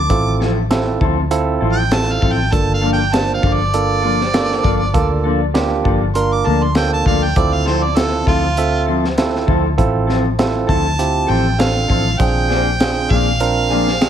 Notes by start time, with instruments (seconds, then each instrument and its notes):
Already playing: harmonica D6
0.10 fingered electric bass A1, tine electric piano C4 E4 F4 A4, kick, closed hi-hat
0.40 clean electric guitar F3 C4 E4 A4, snare
0.70 tine electric piano C4 E4 F4 A4, snare, closed hi-hat
1.01 fingered electric bass D2, clean electric guitar F3 C4 E4 A4, kick
1.31 tine electric piano C4 E4 F4 A4, closed hi-hat
1.61 fingered electric bass A1, clean electric guitar F3 C4 E4 A4
1.72 harmonica G5
1.91 tine electric piano C4 E4 F4 A4, harmonica A5, snare, closed hi-hat
2.12 harmonica F5
2.21 fingered electric bass A1, clean electric guitar F3 C4 E4 A4, kick
2.32 harmonica G5
2.52 fingered electric bass G1, tine electric piano A#3 D4 F4 A4, harmonica A5, kick, closed hi-hat
2.74 harmonica F5
2.81 clean electric guitar F3 A#3 D4 A4
2.93 harmonica G5
3.13 tine electric piano A#3 D4 F4 C5, harmonica A5, snare, closed hi-hat
3.34 harmonica F5
3.42 fingered electric bass G1, clean electric guitar F3 A#3 D4 A4, kick
3.54 harmonica D5
3.74 tine electric piano A#3 D4 F4 A4, closed hi-hat
4.02 clean electric guitar F3 A#3 D4 A4
4.21 snare
4.34 tine electric piano A#3 D4 F4 A4, snare, closed hi-hat
4.51 snare
4.63 fingered electric bass G1, clean electric guitar F3 A#3 D4 A4, kick
4.94 fingered electric bass D2, tine electric piano A#3 D4 F4 A4, kick, closed hi-hat
5.24 clean electric guitar F3 A#3 D4 A4
5.54 tine electric piano A#3 D4 F4 G4, snare, closed hi-hat
5.84 fingered electric bass G1, clean electric guitar F3 A#3 D4 A4, kick
6.15 tine electric piano A#3 D4 F4 A#4, harmonica C6, closed hi-hat
6.33 harmonica D6
6.45 fingered electric bass D2, clean electric guitar F3 A#3 D4 A4, harmonica A5
6.64 harmonica C6
6.75 tine electric piano A#3 D4 F4 A4, harmonica G5, snare, closed hi-hat
6.94 harmonica A5
7.06 fingered electric bass D2, clean electric guitar F3 A#3 D4 A4, harmonica F5, kick
7.24 harmonica G5
7.36 fingered electric bass D2, tine electric piano C4 E4 F4 A4, harmonica D5, kick, closed hi-hat
7.54 harmonica F5
7.66 clean electric guitar F3 C4 E4 A4, harmonica C5, snare
7.84 harmonica D5
7.96 tine electric piano C4 E4 F4 A4, harmonica A4, snare, closed hi-hat
8.26 fingered electric bass D2, clean electric guitar F3 C4 E4 A4, harmonica F4, kick
8.57 tine electric piano C4 F4 A4 E5, closed hi-hat
8.86 clean electric guitar F3 C4 E4 A4
9.05 snare
9.18 tine electric piano C4 E4 F4 A4, snare, closed hi-hat
9.35 snare
9.47 fingered electric bass D2, clean electric guitar F3 C4 E4 A4, kick
9.78 fingered electric bass A1, tine electric piano C4 E4 F4 A4, kick, closed hi-hat
10.07 clean electric guitar F3 C4 E4 A4, snare
10.39 tine electric piano C4 E4 F4 A4, snare, closed hi-hat
10.67 fingered electric bass D2, clean electric guitar F3 C4 E4 A4, harmonica A5, kick
10.99 tine electric piano C4 E4 F4 G4, closed hi-hat
11.27 fingered electric bass A1, clean electric guitar F3 C4 E4 A4, harmonica G5
11.59 tine electric piano C4 D4 F4 A4, harmonica F5, snare, closed hi-hat
11.88 fingered electric bass A1, clean electric guitar F3 C4 E4 A4, kick
12.19 fingered electric bass A#1, tine electric piano C4 D4 F4 G#4, harmonica G5, kick, closed hi-hat
12.49 clean electric guitar F3 A#3 D4 G#4, snare
12.80 tine electric piano C4 D4 F4 G#4, snare, closed hi-hat
13.09 fingered electric bass A#1, clean electric guitar F3 A#3 D4 G#4, harmonica F5, kick
13.40 tine electric piano C4 D4 F4 A#4, harmonica F5, closed hi-hat
13.70 clean electric guitar F3 A#3 D4 G#4
13.88 snare
14.01 tine electric piano C4 D4 F4 G#4, snare, closed hi-hat